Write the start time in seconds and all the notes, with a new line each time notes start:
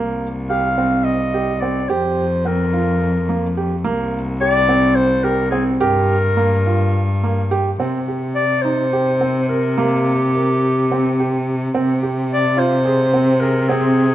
Already playing: C2 A#3
0.50 G4 F5
0.78 C4
1.04 D#5
1.34 G4
1.60 C4 D5
1.89 F2 G4 C5
2.45 C4 A#4
2.73 F4
3.29 A#3
3.57 G4
3.84 C2 A#3
4.41 G4 D5
4.69 C4
4.95 C5
5.24 G4 A#4
5.51 C4 G#4
5.80 G2 G4 A#4
6.37 A#3
6.67 F4
7.24 A#3
7.51 G4
7.80 C3 C4
8.08 G4
8.35 D5
8.62 D#4 C5
8.93 G4
9.21 C4
9.48 A#4
9.78 A#3 G4
10.35 A#4
10.91 C4
11.20 G4
11.74 C3 C4
12.03 G4
12.33 D5
12.57 F4 C5
12.85 G#4
13.13 C4
13.40 G#4 A#4
13.68 C4 G#4